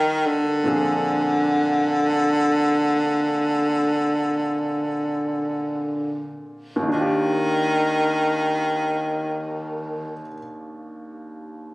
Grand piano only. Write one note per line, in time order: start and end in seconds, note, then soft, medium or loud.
0.00 0.64 G2 soft
0.00 0.63 F3 soft
0.00 0.64 A#3 soft
0.00 0.64 D4 soft
0.00 0.65 G4 soft
0.64 6.87 A#2 soft
0.64 6.88 F3 soft
0.64 6.89 C4 soft
0.64 6.87 D4 soft
0.68 6.90 G#4 medium
6.76 10.13 D#2 medium
6.82 10.19 D#3 soft
6.89 10.26 D4 soft
6.95 10.32 F4 soft
7.01 10.38 G4 medium